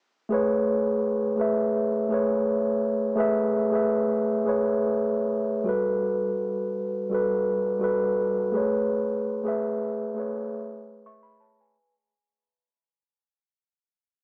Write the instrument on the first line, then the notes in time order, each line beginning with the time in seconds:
tine electric piano
0.29 A3 G#4 B4
0.34 C#5
1.36 A3 G#4 B4
1.41 E5
2.09 A3 G#4 B4
2.14 C#5
3.16 A3 G#4 B4
3.20 E5
3.71 A3 G#4 B4
3.75 E5
4.44 A3 G#4 B4
4.49 C#5
5.64 G3 F#4 A4
5.69 B4
7.10 G3 F#4 A4
7.15 B4
7.79 G3 F#4 A4
7.84 B4
8.52 A3 G#4 B4
8.57 C#5
9.43 A3 G#4 B4
9.48 E5
10.14 A3 G#4 B4
10.20 C#5
11.06 E5 C#6
11.23 B5
11.40 C#5 A5
11.61 B4 G#5